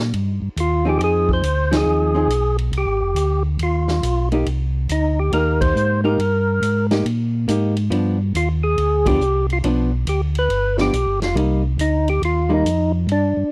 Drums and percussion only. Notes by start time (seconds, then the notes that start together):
0.13 ride
0.57 hi-hat pedal, ride
1.01 ride
1.29 kick
1.43 hi-hat pedal, ride
1.73 snare, ride
2.30 hi-hat pedal, ride
2.58 ride
2.73 ride
3.16 hi-hat pedal, ride
3.59 ride
3.88 snare
4.03 hi-hat pedal, ride
4.32 ride
4.46 ride
4.89 hi-hat pedal, ride
5.32 ride
5.61 kick, ride
5.76 hi-hat pedal
6.20 ride
6.62 hi-hat pedal, ride
6.91 snare, ride
7.06 ride
7.48 hi-hat pedal, ride
7.76 ride
7.92 ride
8.35 hi-hat pedal, ride
8.78 ride
9.06 kick, ride
9.21 hi-hat pedal
9.50 ride
9.64 ride
10.07 hi-hat pedal, ride
10.35 ride
10.50 ride
10.78 snare
10.93 hi-hat pedal, ride
11.22 snare, ride
11.37 ride
11.79 hi-hat pedal, ride
12.08 ride
12.23 ride
12.66 hi-hat pedal, ride
13.09 ride